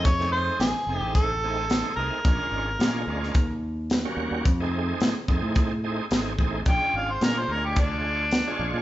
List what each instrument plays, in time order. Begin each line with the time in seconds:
Already playing: fingered electric bass F2
0.05 harmonica C#5, kick, closed hi-hat
0.20 tonewheel organ A3 C4 D#4 G#4, snare
0.32 harmonica C5
0.59 fingered electric bass A1, harmonica G#4, snare, closed hi-hat
0.87 fingered electric bass F1, tonewheel organ A3 C4 D#4 G#4
0.97 fingered electric bass A1, harmonica G4
1.15 harmonica A4, kick, closed hi-hat
1.44 tonewheel organ A3 C4 D#4 G#4
1.70 tonewheel organ A3 C4 D#4 G#4, snare, closed hi-hat
1.96 fingered electric bass C2, tonewheel organ A3 C4 D#4 G#4, harmonica A#4
2.25 fingered electric bass A#1, tonewheel organ G#3 C#4 D4 F4, kick, closed hi-hat
2.52 fingered electric bass G#1
2.79 fingered electric bass A#2, tonewheel organ G#3 C#4 D4 F4, snare, closed hi-hat
3.07 fingered electric bass D2, tonewheel organ G#3 C#4 D4 F4
3.23 snare
3.35 fingered electric bass D#2, kick, closed hi-hat
3.90 snare, closed hi-hat
4.05 tonewheel organ G3 A#3 C#4 F#4
4.17 fingered electric bass D#2
4.31 fingered electric bass D#2
4.45 fingered electric bass F2, kick, closed hi-hat
4.60 tonewheel organ A3 C4 D#4 G#4
5.00 fingered electric bass A2, snare, closed hi-hat
5.28 fingered electric bass F2, tonewheel organ A3 C4 D#4 G#4, kick
5.42 fingered electric bass A2
5.56 kick, closed hi-hat
5.84 tonewheel organ A3 C4 D#4 G#4
6.11 fingered electric bass G#1, tonewheel organ A3 C4 D#4 G#4, snare, closed hi-hat
6.38 fingered electric bass A1, tonewheel organ A3 C4 D#4 G#4, kick
6.66 fingered electric bass A#1, tonewheel organ G#3 C#4 D4 F4, harmonica G5, kick, closed hi-hat
6.94 fingered electric bass G#1, harmonica F5
7.11 harmonica C5
7.21 fingered electric bass A#2, tonewheel organ G#3 C#4 D4 F4, harmonica A#4, snare, closed hi-hat
7.39 harmonica C5
7.48 fingered electric bass D2, tonewheel organ G#3 D4 F4 C#5, harmonica A#4
7.65 harmonica G4
7.76 harmonica D4, kick, closed hi-hat
8.31 snare, closed hi-hat
8.47 tonewheel organ G#3 D4 F4 C#5
8.59 fingered electric bass A#1
8.74 fingered electric bass A#2